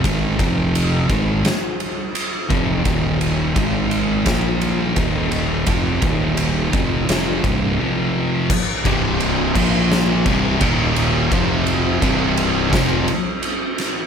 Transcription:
<<
  \new Staff \with { instrumentName = "Distorted electric guitar" } { \clef bass \time 4/4 \key c \minor \tempo 4 = 85 <aes, ees aes>8 <f, c f>4 <aes, ees aes>8 r4. <f, c f>8 | <ees, bes, ees>4 <aes, ees aes>4 <bes, f bes>4 <ees, bes, ees>4 | <f, c f>8 <ees, bes, ees>4 <f, c f>8 <f, c f>8 <c, g, c>8 <f, c f>4 | r8 <c, g, c>4 <bes, f bes>4 <c, g, c>8 <ees, bes, ees>4 |
<f, c f>4 <c, g, c>4 <f, c f>8 r4. | }
  \new Staff \with { instrumentName = "Distorted electric guitar" } { \clef bass \time 4/4 \key c \minor <aes, ees aes>8 <f, c f>4 <aes, ees aes>8 r4. <f, c f>8 | <ees, bes, ees>4 <aes, ees aes>4 <bes, f bes>4 <ees, bes, ees>4 | <f, c f>8 <ees, bes, ees>4 <f, c f>8 <f, c f>8 <c, g, c>8 <f, c f>4 | r8 <c, g, c>4 <bes, f bes>4 <c, g, c>8 <ees, bes, ees>4 |
<f, c f>4 <c, g, c>4 <f, c f>8 r4. | }
  \new Staff \with { instrumentName = "Distorted electric guitar" } { \clef bass \time 4/4 \key c \minor r1 | r1 | r1 | r8 <c, g, c>4 <bes, f bes>4 <c, g, c>8 <ees, bes, ees>4 |
<f, c f>4 <c, g, c>4 <f, c f>8 r4. | }
  \new Staff \with { instrumentName = "Fingered electric bass" } { \clef bass \time 4/4 \key c \minor aes,,8 f,,4 aes,,8 r4. f,,8 | ees,,4 aes,,4 bes,,4 ees,,4 | f,,8 ees,,4 f,,8 f,,8 c,,8 r4 | r8 c,,4 bes,,4 c,,8 ees,,4 |
f,,4 c,,4 f,,8 r4. | }
  \new DrumStaff \with { instrumentName = "Drums" } \drummode { \time 4/4 <bd cymr>8 <bd cymr>8 cymr8 <bd cymr>8 <cymr sn>8 cymr8 cymr8 <bd cymr>8 | <bd cymr>8 cymr8 <bd cymr>8 cymr8 <bd cymr sn>8 cymr8 <bd cymr>8 cymr8 | <bd cymr>8 <bd cymr>8 cymr8 <bd cymr>8 <cymr sn>8 <bd cymr>8 r4 | <cymc bd>8 <bd cymr>8 cymr8 <cymc bd>8 sn8 <bd cymr>8 <bd cymr>8 cymr8 |
<bd cymr>8 cymr8 <bd cymr>8 cymr8 <bd cymr sn>8 cymr8 cymr8 <cymr sn>8 | }
>>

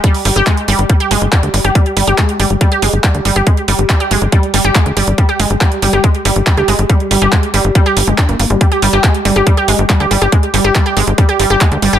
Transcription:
<<
  \new Staff \with { instrumentName = "Synth arpeggio sound" } { \clef bass \time 4/4 \key c \minor \tempo 4 = 140 g16 r16 g16 g'16 aes16 r16 g16 r16 g16 g'16 aes16 r16 g16 r16 g16 g'16 | g16 r16 g16 g'16 aes16 r16 g16 r16 g16 g'16 aes16 r16 g16 r16 g16 g'16 | aes16 r16 g16 r16 g16 g'16 aes16 r16 g16 r16 g16 g'16 aes16 r16 g16 r16 | g16 g'16 aes16 r16 g16 r16 g16 g'16 aes16 r16 g16 r16 g16 g'16 aes16 r16 |
g16 r16 g16 g'16 aes16 r16 g16 r16 g16 g'16 r16 aes16 d'16 bes16 bes16 g16 | g16 g'16 g16 g'16 aes16 r16 g16 g'16 g16 g'16 aes16 r16 g16 g'16 g16 g'16 | aes16 r16 g16 g'16 g16 g'16 aes16 r16 g16 g'16 g16 g'16 aes16 r16 g16 g'16 | }
  \new Staff \with { instrumentName = "Analog synth bass" } { \clef bass \time 4/4 \key c \minor r8 g,,16 g,,16 r8 g,,16 g,,16 r8 g,,16 g,,16 r16 d,16 g,,16 g,,16 | r8 g,,16 g,,16 r8 g,,16 g,,16 r8 g,,16 g,,16 r16 d,16 g,,16 g,,16 | r8 g,,16 g,,16 r8 g,,16 g,,16 r8 g,,16 g,,16 r16 d,16 g,,16 g,,16 | r8 g,,16 g,,16 r8 g,,16 g,,16 r8 g,,16 g,,16 r16 d,16 g,,16 g,,16 |
r8 g,,16 g,,16 r8 g,,16 g,,16 r8 g,,16 g,,16 r16 g,,16 g,,16 g,,16 | r8 g,,16 g,,16 r8 g,,16 g,,16 r8 g,,16 g,,16 r16 d,16 g,,16 g,,16 | r8 g,,16 g,,16 r8 g,,16 g,,16 r8 g,,16 g,,16 r16 d,16 g,,16 g,,16 | }
  \new DrumStaff \with { instrumentName = "Drums" } \drummode { \time 4/4 <hh bd>16 hho16 hho16 hh16 <hc hh bd>16 hh16 hho16 hh16 <hh bd>16 hh16 hho16 hh16 <hc hh bd>16 hh16 hho16 hh16 | <hh bd>16 hh16 hho16 hh16 <hc hh bd>16 hh16 hho16 hh16 <hh bd>16 hh16 hho8 <hc hh bd>16 hh16 hho16 hh16 | <hh bd>16 hh16 hho16 hh16 <hc hh bd>16 hh16 hho16 hh16 <hh bd>16 hh16 hho16 hh16 <hc hh bd>16 hh16 hho16 hh16 | <hh bd>16 hh16 hho16 hh16 <hc hh bd>16 hh16 hho16 hh16 <hh bd>16 hh16 hho16 hh16 <hc hh bd>16 hh16 hho16 hh16 |
<hh bd>16 hh16 hho16 hh16 <hc hh bd>16 hh16 hho16 hh16 <hh bd>16 hh16 hho16 hh16 <hc hh bd>16 hh16 hho16 hh16 | <hh bd>16 hh16 hho16 hh16 <hc hh bd>16 hh16 hho8 <hh bd>16 hh16 hho16 hh16 <hc hh bd>16 hh16 hho16 hh16 | <hh bd>16 hh16 hho16 hh16 <hc hh bd>16 hh16 hho16 hh16 <hh bd>16 hh16 hho16 hh16 <hc hh bd>16 hh16 hho16 hh16 | }
>>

